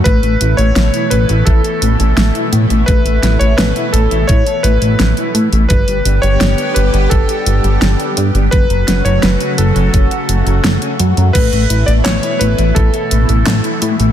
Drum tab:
CC |----------------|----------------|----------------|----------------|
HH |xxxxxxxxxxxxxxxx|xxxxxxxxxxxxxxxx|xxxxxxxxxxxxxxxx|xxxxxxxxxxxxxxxx|
CP |----------------|----------------|----------------|----------------|
SD |----o-------o---|--o-o-------o---|----o-------o---|--o-o-------o---|
BD |o-------o-------|o-------o-------|o-------o-------|o-------o-------|

CC |x---------------|
HH |xxxxxxxxxxxxxxxx|
CP |----x-------x---|
SD |----o-------o---|
BD |o-------o-------|